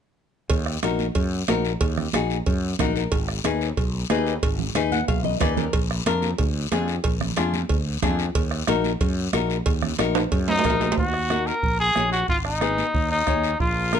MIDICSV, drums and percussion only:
0, 0, Header, 1, 3, 480
1, 0, Start_track
1, 0, Key_signature, -6, "minor"
1, 0, Tempo, 327690
1, 734, Time_signature, 4, 2, 24, 8
1, 16076, Key_signature, -6, "minor"
1, 20504, End_track
2, 0, Start_track
2, 0, Title_t, "Two-headed folk drums"
2, 735, Note_on_c, 9, 36, 85
2, 882, Note_off_c, 9, 36, 0
2, 971, Note_on_c, 9, 37, 72
2, 1117, Note_off_c, 9, 37, 0
2, 1214, Note_on_c, 9, 37, 86
2, 1361, Note_off_c, 9, 37, 0
2, 1691, Note_on_c, 9, 36, 78
2, 1838, Note_off_c, 9, 36, 0
2, 2174, Note_on_c, 9, 37, 77
2, 2320, Note_off_c, 9, 37, 0
2, 2650, Note_on_c, 9, 36, 80
2, 2796, Note_off_c, 9, 36, 0
2, 2894, Note_on_c, 9, 37, 69
2, 3041, Note_off_c, 9, 37, 0
2, 3137, Note_on_c, 9, 37, 90
2, 3283, Note_off_c, 9, 37, 0
2, 3614, Note_on_c, 9, 36, 86
2, 3761, Note_off_c, 9, 36, 0
2, 4093, Note_on_c, 9, 36, 66
2, 4101, Note_on_c, 9, 37, 79
2, 4240, Note_off_c, 9, 36, 0
2, 4247, Note_off_c, 9, 37, 0
2, 4571, Note_on_c, 9, 36, 88
2, 4718, Note_off_c, 9, 36, 0
2, 4811, Note_on_c, 9, 37, 69
2, 4958, Note_off_c, 9, 37, 0
2, 5050, Note_on_c, 9, 37, 86
2, 5196, Note_off_c, 9, 37, 0
2, 5526, Note_on_c, 9, 36, 78
2, 5673, Note_off_c, 9, 36, 0
2, 6005, Note_on_c, 9, 37, 86
2, 6151, Note_off_c, 9, 37, 0
2, 6486, Note_on_c, 9, 36, 89
2, 6632, Note_off_c, 9, 36, 0
2, 6962, Note_on_c, 9, 37, 89
2, 7109, Note_off_c, 9, 37, 0
2, 7447, Note_on_c, 9, 36, 74
2, 7594, Note_off_c, 9, 36, 0
2, 7925, Note_on_c, 9, 36, 70
2, 7929, Note_on_c, 9, 37, 80
2, 8072, Note_off_c, 9, 36, 0
2, 8075, Note_off_c, 9, 37, 0
2, 8407, Note_on_c, 9, 36, 89
2, 8553, Note_off_c, 9, 36, 0
2, 8654, Note_on_c, 9, 37, 69
2, 8800, Note_off_c, 9, 37, 0
2, 8891, Note_on_c, 9, 37, 91
2, 9037, Note_off_c, 9, 37, 0
2, 9364, Note_on_c, 9, 36, 77
2, 9511, Note_off_c, 9, 36, 0
2, 9848, Note_on_c, 9, 37, 80
2, 9995, Note_off_c, 9, 37, 0
2, 10322, Note_on_c, 9, 36, 91
2, 10469, Note_off_c, 9, 36, 0
2, 10561, Note_on_c, 9, 37, 70
2, 10708, Note_off_c, 9, 37, 0
2, 10802, Note_on_c, 9, 37, 89
2, 10949, Note_off_c, 9, 37, 0
2, 11280, Note_on_c, 9, 36, 82
2, 11426, Note_off_c, 9, 36, 0
2, 11757, Note_on_c, 9, 36, 68
2, 11759, Note_on_c, 9, 37, 79
2, 11904, Note_off_c, 9, 36, 0
2, 11905, Note_off_c, 9, 37, 0
2, 12234, Note_on_c, 9, 36, 91
2, 12380, Note_off_c, 9, 36, 0
2, 12468, Note_on_c, 9, 37, 68
2, 12615, Note_off_c, 9, 37, 0
2, 12705, Note_on_c, 9, 37, 88
2, 12852, Note_off_c, 9, 37, 0
2, 13193, Note_on_c, 9, 36, 81
2, 13339, Note_off_c, 9, 36, 0
2, 13672, Note_on_c, 9, 37, 83
2, 13818, Note_off_c, 9, 37, 0
2, 14155, Note_on_c, 9, 36, 92
2, 14302, Note_off_c, 9, 36, 0
2, 14391, Note_on_c, 9, 37, 76
2, 14537, Note_off_c, 9, 37, 0
2, 14636, Note_on_c, 9, 37, 90
2, 14783, Note_off_c, 9, 37, 0
2, 15115, Note_on_c, 9, 36, 74
2, 15261, Note_off_c, 9, 36, 0
2, 15596, Note_on_c, 9, 36, 68
2, 15599, Note_on_c, 9, 37, 76
2, 15743, Note_off_c, 9, 36, 0
2, 15746, Note_off_c, 9, 37, 0
2, 16077, Note_on_c, 9, 36, 82
2, 16224, Note_off_c, 9, 36, 0
2, 16313, Note_on_c, 9, 37, 67
2, 16459, Note_off_c, 9, 37, 0
2, 16557, Note_on_c, 9, 37, 88
2, 16703, Note_off_c, 9, 37, 0
2, 17037, Note_on_c, 9, 36, 80
2, 17183, Note_off_c, 9, 36, 0
2, 17512, Note_on_c, 9, 37, 68
2, 17658, Note_off_c, 9, 37, 0
2, 17997, Note_on_c, 9, 36, 83
2, 18143, Note_off_c, 9, 36, 0
2, 18233, Note_on_c, 9, 37, 67
2, 18379, Note_off_c, 9, 37, 0
2, 18475, Note_on_c, 9, 37, 78
2, 18621, Note_off_c, 9, 37, 0
2, 18959, Note_on_c, 9, 36, 79
2, 19105, Note_off_c, 9, 36, 0
2, 19436, Note_on_c, 9, 37, 76
2, 19441, Note_on_c, 9, 36, 63
2, 19583, Note_off_c, 9, 37, 0
2, 19588, Note_off_c, 9, 36, 0
2, 19922, Note_on_c, 9, 36, 81
2, 20069, Note_off_c, 9, 36, 0
2, 20402, Note_on_c, 9, 37, 85
2, 20504, Note_off_c, 9, 37, 0
2, 20504, End_track
3, 0, Start_track
3, 0, Title_t, "Drums"
3, 726, Note_on_c, 9, 56, 105
3, 732, Note_on_c, 9, 74, 74
3, 873, Note_off_c, 9, 56, 0
3, 878, Note_off_c, 9, 74, 0
3, 1210, Note_on_c, 9, 73, 70
3, 1212, Note_on_c, 9, 56, 74
3, 1214, Note_on_c, 9, 63, 85
3, 1356, Note_off_c, 9, 73, 0
3, 1359, Note_off_c, 9, 56, 0
3, 1360, Note_off_c, 9, 63, 0
3, 1449, Note_on_c, 9, 63, 70
3, 1451, Note_on_c, 9, 73, 64
3, 1596, Note_off_c, 9, 63, 0
3, 1597, Note_off_c, 9, 73, 0
3, 1682, Note_on_c, 9, 74, 72
3, 1687, Note_on_c, 9, 56, 94
3, 1829, Note_off_c, 9, 74, 0
3, 1833, Note_off_c, 9, 56, 0
3, 2170, Note_on_c, 9, 56, 65
3, 2170, Note_on_c, 9, 66, 70
3, 2170, Note_on_c, 9, 73, 70
3, 2171, Note_on_c, 9, 63, 78
3, 2316, Note_off_c, 9, 56, 0
3, 2316, Note_off_c, 9, 66, 0
3, 2316, Note_off_c, 9, 73, 0
3, 2317, Note_off_c, 9, 63, 0
3, 2411, Note_on_c, 9, 73, 69
3, 2557, Note_off_c, 9, 73, 0
3, 2647, Note_on_c, 9, 56, 101
3, 2650, Note_on_c, 9, 74, 73
3, 2794, Note_off_c, 9, 56, 0
3, 2796, Note_off_c, 9, 74, 0
3, 2892, Note_on_c, 9, 64, 71
3, 3039, Note_off_c, 9, 64, 0
3, 3126, Note_on_c, 9, 63, 88
3, 3129, Note_on_c, 9, 73, 72
3, 3132, Note_on_c, 9, 56, 70
3, 3272, Note_off_c, 9, 63, 0
3, 3275, Note_off_c, 9, 73, 0
3, 3279, Note_off_c, 9, 56, 0
3, 3372, Note_on_c, 9, 73, 72
3, 3518, Note_off_c, 9, 73, 0
3, 3607, Note_on_c, 9, 74, 69
3, 3610, Note_on_c, 9, 56, 88
3, 3754, Note_off_c, 9, 74, 0
3, 3756, Note_off_c, 9, 56, 0
3, 4089, Note_on_c, 9, 56, 67
3, 4089, Note_on_c, 9, 63, 82
3, 4089, Note_on_c, 9, 64, 83
3, 4096, Note_on_c, 9, 73, 73
3, 4235, Note_off_c, 9, 56, 0
3, 4235, Note_off_c, 9, 63, 0
3, 4235, Note_off_c, 9, 64, 0
3, 4242, Note_off_c, 9, 73, 0
3, 4330, Note_on_c, 9, 73, 77
3, 4476, Note_off_c, 9, 73, 0
3, 4565, Note_on_c, 9, 56, 99
3, 4570, Note_on_c, 9, 74, 77
3, 4712, Note_off_c, 9, 56, 0
3, 4717, Note_off_c, 9, 74, 0
3, 5044, Note_on_c, 9, 63, 85
3, 5050, Note_on_c, 9, 56, 72
3, 5051, Note_on_c, 9, 73, 68
3, 5190, Note_off_c, 9, 63, 0
3, 5197, Note_off_c, 9, 56, 0
3, 5198, Note_off_c, 9, 73, 0
3, 5290, Note_on_c, 9, 73, 69
3, 5436, Note_off_c, 9, 73, 0
3, 5528, Note_on_c, 9, 56, 87
3, 5531, Note_on_c, 9, 74, 67
3, 5674, Note_off_c, 9, 56, 0
3, 5677, Note_off_c, 9, 74, 0
3, 6004, Note_on_c, 9, 63, 77
3, 6005, Note_on_c, 9, 56, 62
3, 6005, Note_on_c, 9, 66, 66
3, 6010, Note_on_c, 9, 73, 70
3, 6150, Note_off_c, 9, 63, 0
3, 6152, Note_off_c, 9, 56, 0
3, 6152, Note_off_c, 9, 66, 0
3, 6157, Note_off_c, 9, 73, 0
3, 6249, Note_on_c, 9, 73, 74
3, 6395, Note_off_c, 9, 73, 0
3, 6487, Note_on_c, 9, 56, 109
3, 6487, Note_on_c, 9, 74, 74
3, 6633, Note_off_c, 9, 74, 0
3, 6634, Note_off_c, 9, 56, 0
3, 6721, Note_on_c, 9, 64, 75
3, 6867, Note_off_c, 9, 64, 0
3, 6958, Note_on_c, 9, 63, 78
3, 6967, Note_on_c, 9, 56, 70
3, 6971, Note_on_c, 9, 73, 66
3, 7104, Note_off_c, 9, 63, 0
3, 7114, Note_off_c, 9, 56, 0
3, 7117, Note_off_c, 9, 73, 0
3, 7203, Note_on_c, 9, 63, 71
3, 7214, Note_on_c, 9, 73, 73
3, 7350, Note_off_c, 9, 63, 0
3, 7360, Note_off_c, 9, 73, 0
3, 7446, Note_on_c, 9, 56, 94
3, 7458, Note_on_c, 9, 74, 67
3, 7593, Note_off_c, 9, 56, 0
3, 7604, Note_off_c, 9, 74, 0
3, 7677, Note_on_c, 9, 64, 98
3, 7823, Note_off_c, 9, 64, 0
3, 7919, Note_on_c, 9, 56, 63
3, 7919, Note_on_c, 9, 64, 77
3, 7925, Note_on_c, 9, 73, 72
3, 8065, Note_off_c, 9, 64, 0
3, 8066, Note_off_c, 9, 56, 0
3, 8071, Note_off_c, 9, 73, 0
3, 8163, Note_on_c, 9, 64, 102
3, 8166, Note_on_c, 9, 73, 68
3, 8310, Note_off_c, 9, 64, 0
3, 8313, Note_off_c, 9, 73, 0
3, 8396, Note_on_c, 9, 56, 111
3, 8402, Note_on_c, 9, 74, 73
3, 8543, Note_off_c, 9, 56, 0
3, 8549, Note_off_c, 9, 74, 0
3, 8879, Note_on_c, 9, 63, 82
3, 8881, Note_on_c, 9, 56, 73
3, 8884, Note_on_c, 9, 73, 68
3, 9025, Note_off_c, 9, 63, 0
3, 9027, Note_off_c, 9, 56, 0
3, 9030, Note_off_c, 9, 73, 0
3, 9115, Note_on_c, 9, 73, 69
3, 9122, Note_on_c, 9, 63, 70
3, 9261, Note_off_c, 9, 73, 0
3, 9268, Note_off_c, 9, 63, 0
3, 9352, Note_on_c, 9, 56, 92
3, 9363, Note_on_c, 9, 74, 71
3, 9498, Note_off_c, 9, 56, 0
3, 9509, Note_off_c, 9, 74, 0
3, 9839, Note_on_c, 9, 56, 66
3, 9839, Note_on_c, 9, 66, 70
3, 9839, Note_on_c, 9, 73, 70
3, 9845, Note_on_c, 9, 63, 83
3, 9985, Note_off_c, 9, 56, 0
3, 9985, Note_off_c, 9, 66, 0
3, 9986, Note_off_c, 9, 73, 0
3, 9991, Note_off_c, 9, 63, 0
3, 10075, Note_on_c, 9, 73, 74
3, 10222, Note_off_c, 9, 73, 0
3, 10310, Note_on_c, 9, 56, 103
3, 10316, Note_on_c, 9, 74, 73
3, 10456, Note_off_c, 9, 56, 0
3, 10462, Note_off_c, 9, 74, 0
3, 10558, Note_on_c, 9, 64, 73
3, 10704, Note_off_c, 9, 64, 0
3, 10790, Note_on_c, 9, 56, 73
3, 10796, Note_on_c, 9, 63, 79
3, 10797, Note_on_c, 9, 73, 69
3, 10937, Note_off_c, 9, 56, 0
3, 10942, Note_off_c, 9, 63, 0
3, 10943, Note_off_c, 9, 73, 0
3, 11039, Note_on_c, 9, 63, 70
3, 11039, Note_on_c, 9, 73, 73
3, 11185, Note_off_c, 9, 73, 0
3, 11186, Note_off_c, 9, 63, 0
3, 11270, Note_on_c, 9, 56, 90
3, 11283, Note_on_c, 9, 74, 68
3, 11417, Note_off_c, 9, 56, 0
3, 11430, Note_off_c, 9, 74, 0
3, 11753, Note_on_c, 9, 63, 81
3, 11753, Note_on_c, 9, 64, 83
3, 11755, Note_on_c, 9, 56, 67
3, 11756, Note_on_c, 9, 73, 72
3, 11900, Note_off_c, 9, 63, 0
3, 11900, Note_off_c, 9, 64, 0
3, 11902, Note_off_c, 9, 56, 0
3, 11902, Note_off_c, 9, 73, 0
3, 11994, Note_on_c, 9, 73, 70
3, 12140, Note_off_c, 9, 73, 0
3, 12234, Note_on_c, 9, 56, 105
3, 12239, Note_on_c, 9, 74, 71
3, 12380, Note_off_c, 9, 56, 0
3, 12385, Note_off_c, 9, 74, 0
3, 12710, Note_on_c, 9, 63, 89
3, 12711, Note_on_c, 9, 73, 66
3, 12716, Note_on_c, 9, 56, 74
3, 12857, Note_off_c, 9, 63, 0
3, 12858, Note_off_c, 9, 73, 0
3, 12862, Note_off_c, 9, 56, 0
3, 12953, Note_on_c, 9, 73, 70
3, 12956, Note_on_c, 9, 63, 65
3, 13099, Note_off_c, 9, 73, 0
3, 13103, Note_off_c, 9, 63, 0
3, 13192, Note_on_c, 9, 74, 66
3, 13196, Note_on_c, 9, 56, 94
3, 13338, Note_off_c, 9, 74, 0
3, 13342, Note_off_c, 9, 56, 0
3, 13668, Note_on_c, 9, 63, 83
3, 13669, Note_on_c, 9, 56, 65
3, 13672, Note_on_c, 9, 73, 76
3, 13814, Note_off_c, 9, 63, 0
3, 13815, Note_off_c, 9, 56, 0
3, 13818, Note_off_c, 9, 73, 0
3, 13915, Note_on_c, 9, 73, 74
3, 14061, Note_off_c, 9, 73, 0
3, 14148, Note_on_c, 9, 56, 98
3, 14161, Note_on_c, 9, 74, 73
3, 14294, Note_off_c, 9, 56, 0
3, 14308, Note_off_c, 9, 74, 0
3, 14391, Note_on_c, 9, 64, 74
3, 14537, Note_off_c, 9, 64, 0
3, 14626, Note_on_c, 9, 56, 70
3, 14633, Note_on_c, 9, 63, 81
3, 14641, Note_on_c, 9, 73, 67
3, 14773, Note_off_c, 9, 56, 0
3, 14780, Note_off_c, 9, 63, 0
3, 14787, Note_off_c, 9, 73, 0
3, 14869, Note_on_c, 9, 65, 100
3, 14872, Note_on_c, 9, 63, 70
3, 14881, Note_on_c, 9, 73, 70
3, 15015, Note_off_c, 9, 65, 0
3, 15019, Note_off_c, 9, 63, 0
3, 15027, Note_off_c, 9, 73, 0
3, 15112, Note_on_c, 9, 74, 66
3, 15114, Note_on_c, 9, 56, 89
3, 15259, Note_off_c, 9, 74, 0
3, 15260, Note_off_c, 9, 56, 0
3, 15350, Note_on_c, 9, 66, 88
3, 15497, Note_off_c, 9, 66, 0
3, 15511, Note_on_c, 9, 66, 95
3, 15591, Note_on_c, 9, 56, 60
3, 15596, Note_on_c, 9, 73, 69
3, 15597, Note_on_c, 9, 63, 83
3, 15597, Note_on_c, 9, 64, 75
3, 15658, Note_off_c, 9, 66, 0
3, 15674, Note_on_c, 9, 66, 87
3, 15738, Note_off_c, 9, 56, 0
3, 15742, Note_off_c, 9, 73, 0
3, 15744, Note_off_c, 9, 63, 0
3, 15744, Note_off_c, 9, 64, 0
3, 15820, Note_off_c, 9, 66, 0
3, 15834, Note_on_c, 9, 66, 78
3, 15835, Note_on_c, 9, 73, 74
3, 15980, Note_off_c, 9, 66, 0
3, 15981, Note_off_c, 9, 73, 0
3, 15995, Note_on_c, 9, 66, 90
3, 16077, Note_on_c, 9, 74, 65
3, 16141, Note_off_c, 9, 66, 0
3, 16224, Note_off_c, 9, 74, 0
3, 16556, Note_on_c, 9, 63, 78
3, 16562, Note_on_c, 9, 73, 63
3, 16703, Note_off_c, 9, 63, 0
3, 16708, Note_off_c, 9, 73, 0
3, 16803, Note_on_c, 9, 73, 62
3, 16949, Note_off_c, 9, 73, 0
3, 17047, Note_on_c, 9, 74, 60
3, 17194, Note_off_c, 9, 74, 0
3, 17518, Note_on_c, 9, 63, 72
3, 17522, Note_on_c, 9, 73, 68
3, 17664, Note_off_c, 9, 63, 0
3, 17669, Note_off_c, 9, 73, 0
3, 17764, Note_on_c, 9, 73, 70
3, 17911, Note_off_c, 9, 73, 0
3, 17991, Note_on_c, 9, 74, 69
3, 18138, Note_off_c, 9, 74, 0
3, 18476, Note_on_c, 9, 73, 62
3, 18477, Note_on_c, 9, 63, 81
3, 18622, Note_off_c, 9, 73, 0
3, 18623, Note_off_c, 9, 63, 0
3, 18725, Note_on_c, 9, 63, 62
3, 18726, Note_on_c, 9, 73, 68
3, 18872, Note_off_c, 9, 63, 0
3, 18872, Note_off_c, 9, 73, 0
3, 18963, Note_on_c, 9, 74, 65
3, 19110, Note_off_c, 9, 74, 0
3, 19441, Note_on_c, 9, 73, 64
3, 19445, Note_on_c, 9, 63, 78
3, 19588, Note_off_c, 9, 73, 0
3, 19591, Note_off_c, 9, 63, 0
3, 19680, Note_on_c, 9, 73, 67
3, 19826, Note_off_c, 9, 73, 0
3, 19927, Note_on_c, 9, 74, 67
3, 20073, Note_off_c, 9, 74, 0
3, 20405, Note_on_c, 9, 63, 80
3, 20408, Note_on_c, 9, 73, 64
3, 20504, Note_off_c, 9, 63, 0
3, 20504, Note_off_c, 9, 73, 0
3, 20504, End_track
0, 0, End_of_file